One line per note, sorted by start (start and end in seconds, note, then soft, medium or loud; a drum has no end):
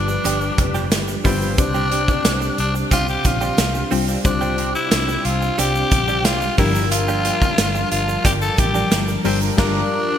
0.00 0.16 G1 medium
0.00 1.60 G2 medium
0.00 1.55 F3 medium
0.00 1.24 G3 medium
0.00 1.55 G3 medium
0.00 0.88 D4 medium
0.00 1.25 D4 medium
0.00 10.18 D4 medium
0.00 1.25 F4 medium
0.00 6.54 G4 medium
0.00 1.25 B4 medium
0.00 1.55 B4 medium
0.08 muted clean electric guitar stroke soft
0.08 shaker soft
0.24 0.49 G1 loud
0.24 0.38 F3 medium
0.24 0.38 B3 medium
0.24 0.38 D4 medium
0.24 0.38 G4 medium
0.24 closed hi-hat medium
0.24 shaker medium
0.41 muted clean electric guitar stroke soft
0.41 shaker soft
0.58 0.92 F1 medium
0.58 muted clean electric guitar stroke soft
0.58 kick medium
0.58 closed hi-hat medium
0.74 0.85 F3 medium
0.74 0.85 B3 medium
0.74 0.85 D4 medium
0.74 0.85 G4 medium
0.74 shaker soft
0.91 1.16 G1 loud
0.91 muted clean electric guitar stroke soft
0.91 snare loud
0.91 closed hi-hat medium
0.91 tambourine medium
0.91 shaker medium
1.08 muted clean electric guitar stroke soft
1.08 shaker soft
1.24 1.58 G1 loud
1.24 1.38 F3 medium
1.24 1.48 G3 medium
1.24 1.38 B3 medium
1.24 1.56 C4 medium
1.24 1.48 D4 medium
1.24 1.38 D4 medium
1.24 1.48 F4 medium
1.24 1.38 G4 medium
1.24 1.48 B4 medium
1.24 kick medium
1.24 open hi-hat medium
1.24 shaker soft
1.41 1.52 F3 medium
1.41 1.52 B3 medium
1.41 1.52 D4 medium
1.41 1.52 G4 medium
1.41 shaker medium
1.58 2.06 C2 loud
1.58 2.54 C3 medium
1.58 2.50 G3 medium
1.58 2.50 C4 medium
1.58 6.54 C4 medium
1.58 2.50 D4 medium
1.58 2.55 D4 loud
1.58 2.51 C5 medium
1.58 muted clean electric guitar stroke soft
1.58 kick loud
1.58 closed hi-hat loud
1.58 shaker medium
1.74 1.88 G3 medium
1.74 1.88 C4 medium
1.74 1.88 D4 medium
1.74 1.88 G4 medium
1.74 shaker medium
1.91 2.01 G3 medium
1.91 2.02 C4 medium
1.91 2.02 D4 medium
1.91 2.02 G4 medium
1.91 closed hi-hat medium
2.08 muted clean electric guitar stroke soft
2.08 kick medium
2.08 shaker soft
2.24 2.49 C2 medium
2.24 muted clean electric guitar stroke soft
2.24 snare loud
2.24 closed hi-hat loud
2.24 tambourine medium
2.24 shaker medium
2.41 muted clean electric guitar stroke medium
2.41 shaker soft
2.58 2.82 C2 loud
2.58 2.74 D4 loud
2.58 closed hi-hat medium
2.74 muted clean electric guitar stroke soft
2.74 shaker soft
2.91 3.16 C2 loud
2.91 3.04 G3 medium
2.91 3.04 C4 medium
2.91 3.05 D4 medium
2.91 3.08 F4 loud
2.91 3.05 G4 medium
2.91 kick loud
2.91 closed hi-hat medium
2.91 shaker medium
3.08 3.28 G4 loud
3.08 muted clean electric guitar stroke soft
3.08 shaker soft
3.24 3.49 A#1 medium
3.24 3.92 F4 loud
3.24 muted clean electric guitar stroke soft
3.24 kick loud
3.24 closed hi-hat medium
3.24 shaker medium
3.41 3.52 G3 medium
3.41 3.52 C4 medium
3.41 3.52 D4 medium
3.41 3.51 G4 medium
3.41 shaker medium
3.58 3.82 C2 loud
3.58 muted clean electric guitar stroke soft
3.58 snare loud
3.58 closed hi-hat medium
3.58 tambourine medium
3.58 shaker medium
3.74 muted clean electric guitar stroke soft
3.74 shaker soft
3.91 4.16 C2 medium
3.91 4.04 G3 medium
3.91 4.14 G3 medium
3.91 4.04 C4 medium
3.91 4.15 C4 medium
3.91 4.05 D4 medium
3.91 4.15 D4 medium
3.91 4.15 F4 medium
3.91 4.05 G4 medium
3.91 open hi-hat medium
3.91 shaker soft
4.08 4.19 G3 medium
4.08 4.19 C4 medium
4.08 4.18 D4 medium
4.08 4.18 G4 medium
4.08 shaker medium
4.24 4.73 C2 loud
4.24 5.21 C3 medium
4.24 5.17 G3 medium
4.24 5.17 C4 medium
4.24 5.17 D4 medium
4.24 4.72 D4 loud
4.24 5.17 C5 medium
4.24 muted clean electric guitar stroke soft
4.24 kick loud
4.24 closed hi-hat loud
4.24 shaker medium
4.41 4.55 G3 medium
4.41 4.55 C4 medium
4.41 4.55 D4 medium
4.41 4.54 G4 medium
4.41 shaker medium
4.58 4.68 G3 medium
4.58 4.69 C4 medium
4.58 4.69 D4 medium
4.58 4.69 G4 medium
4.58 closed hi-hat medium
4.75 5.26 E4 medium
4.75 muted clean electric guitar stroke soft
4.75 shaker soft
4.91 5.16 C2 loud
4.91 muted clean electric guitar stroke soft
4.91 snare loud
4.91 closed hi-hat loud
4.91 tambourine medium
4.91 shaker medium
5.08 muted clean electric guitar stroke medium
5.08 shaker soft
5.25 5.49 C2 loud
5.25 5.60 F4 loud
5.25 closed hi-hat medium
5.41 muted clean electric guitar stroke soft
5.41 shaker soft
5.58 5.82 C2 loud
5.58 5.71 G3 medium
5.58 5.71 C4 loud
5.58 5.72 D4 loud
5.58 6.26 G4 loud
5.58 5.72 G4 medium
5.58 closed hi-hat medium
5.58 shaker medium
5.75 muted clean electric guitar stroke soft
5.75 shaker soft
5.91 6.25 A#1 medium
5.91 muted clean electric guitar stroke soft
5.91 kick loud
5.91 closed hi-hat medium
5.91 shaker medium
6.08 6.19 G3 medium
6.08 6.19 C4 medium
6.08 6.19 D4 medium
6.08 6.18 G4 medium
6.08 shaker soft
6.25 6.49 C2 loud
6.25 6.58 F4 loud
6.25 muted clean electric guitar stroke soft
6.25 snare loud
6.25 closed hi-hat loud
6.25 tambourine medium
6.25 shaker medium
6.41 muted clean electric guitar stroke medium
6.41 shaker soft
6.58 7.30 G1 loud
6.58 7.54 G2 medium
6.58 6.71 F3 medium
6.58 10.18 F3 medium
6.58 7.65 F3 medium
6.58 7.65 G3 medium
6.58 10.18 G3 medium
6.58 6.71 A#3 medium
6.58 7.65 D4 medium
6.58 6.72 D4 medium
6.58 6.89 E4 medium
6.58 6.72 G4 medium
6.58 10.18 A#4 medium
6.58 7.65 A#4 medium
6.58 10.18 A5 medium
6.58 kick loud
6.58 open hi-hat medium
6.58 shaker soft
6.75 6.86 F3 medium
6.75 6.85 A#3 medium
6.75 6.85 D4 medium
6.75 6.85 G4 medium
6.75 shaker medium
6.92 7.88 F4 loud
6.92 muted clean electric guitar stroke soft
6.92 closed hi-hat loud
6.92 shaker medium
7.08 7.22 F3 medium
7.08 7.22 A#3 medium
7.08 7.21 D4 medium
7.08 7.21 G4 medium
7.08 shaker medium
7.25 7.35 F3 medium
7.25 7.35 A#3 medium
7.25 7.35 D4 medium
7.25 7.36 G4 medium
7.25 closed hi-hat medium
7.42 muted clean electric guitar stroke soft
7.42 kick medium
7.42 shaker medium
7.58 7.82 G1 loud
7.58 muted clean electric guitar stroke soft
7.58 snare loud
7.58 closed hi-hat loud
7.58 tambourine medium
7.58 shaker medium
7.75 muted clean electric guitar stroke medium
7.75 shaker soft
7.92 8.16 G1 loud
7.92 8.23 F4 loud
7.92 closed hi-hat medium
8.08 muted clean electric guitar stroke soft
8.08 shaker soft
8.24 8.49 G1 loud
8.24 8.38 F3 medium
8.24 8.38 A#3 medium
8.24 8.38 D4 medium
8.24 8.32 G4 loud
8.24 8.38 G4 medium
8.24 kick loud
8.24 closed hi-hat medium
8.24 shaker medium
8.41 8.60 A4 loud
8.41 muted clean electric guitar stroke soft
8.41 shaker medium
8.58 8.82 A1 loud
8.58 8.98 G4 loud
8.58 muted clean electric guitar stroke soft
8.58 kick loud
8.58 closed hi-hat medium
8.58 shaker medium
8.75 8.86 F3 medium
8.75 8.85 A#3 medium
8.75 8.85 D4 medium
8.75 8.85 G4 medium
8.75 shaker medium
8.91 9.16 G1 loud
8.91 muted clean electric guitar stroke soft
8.91 snare loud
8.91 closed hi-hat medium
8.91 tambourine medium
8.91 shaker medium
9.08 muted clean electric guitar stroke soft
9.08 shaker soft
9.24 9.49 G1 loud
9.24 9.56 G2 medium
9.24 9.38 F3 medium
9.24 9.48 G3 medium
9.24 9.38 A#3 medium
9.24 9.40 C4 medium
9.24 9.48 D4 medium
9.24 9.38 D4 medium
9.24 9.48 F4 medium
9.24 9.38 G4 medium
9.24 9.48 A#4 medium
9.24 open hi-hat medium
9.24 shaker soft
9.41 9.52 F3 soft
9.41 9.52 A#3 medium
9.41 9.52 D4 medium
9.41 9.52 G4 medium
9.41 shaker medium
9.57 9.81 G1 loud
9.57 9.82 F3 loud
9.57 9.80 G3 loud
9.57 9.81 A#3 loud
9.57 9.81 D4 loud
9.57 10.18 D4 loud
9.57 9.81 F4 loud
9.57 9.81 G4 loud
9.57 9.81 A#4 loud
9.57 kick loud
9.57 snare loud
9.57 crash medium